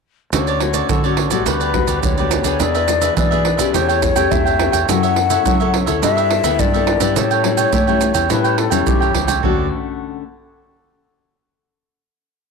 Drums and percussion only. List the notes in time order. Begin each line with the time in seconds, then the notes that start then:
0.33 pandeiro, maracas, surdo
0.47 pandeiro, maracas
0.60 pandeiro
0.74 pandeiro, maracas
0.89 pandeiro, maracas, surdo
1.04 pandeiro, maracas
1.17 pandeiro
1.31 pandeiro, maracas
1.46 pandeiro, maracas, surdo
1.61 pandeiro, maracas
1.74 pandeiro, surdo
1.88 pandeiro, maracas
2.03 pandeiro, maracas, surdo
2.18 pandeiro, maracas
2.31 pandeiro, maracas
2.44 pandeiro, maracas
2.60 pandeiro, maracas, surdo
2.75 pandeiro, maracas
2.88 pandeiro, maracas
3.02 pandeiro, maracas
3.17 pandeiro, maracas, surdo
3.32 pandeiro, maracas
3.45 pandeiro
3.59 pandeiro, maracas
3.74 pandeiro, maracas, surdo
3.89 pandeiro, maracas
4.02 pandeiro, maracas, surdo
4.16 pandeiro, maracas
4.32 pandeiro, maracas, surdo
4.46 pandeiro, maracas
4.59 pandeiro
4.73 pandeiro, maracas
4.89 pandeiro, maracas, surdo
5.03 pandeiro, maracas
5.16 pandeiro
5.30 pandeiro, maracas
5.46 pandeiro, maracas, surdo
5.61 pandeiro, maracas
5.74 pandeiro
5.87 pandeiro, maracas
6.03 pandeiro, maracas, surdo
6.18 pandeiro, maracas
6.31 pandeiro
6.44 pandeiro, maracas
6.59 pandeiro, maracas, surdo
6.74 pandeiro, maracas
6.87 pandeiro
7.00 pandeiro, maracas
7.16 pandeiro, maracas, surdo
7.31 pandeiro, maracas
7.44 pandeiro
7.57 pandeiro, maracas
7.73 pandeiro, maracas, surdo
7.88 pandeiro, maracas
8.01 pandeiro, maracas
8.14 pandeiro, maracas
8.30 pandeiro, maracas, surdo
8.45 pandeiro, maracas
8.58 pandeiro
8.72 pandeiro, maracas
8.87 pandeiro, maracas, surdo
9.02 pandeiro, maracas
9.15 pandeiro
9.28 pandeiro, maracas
9.44 surdo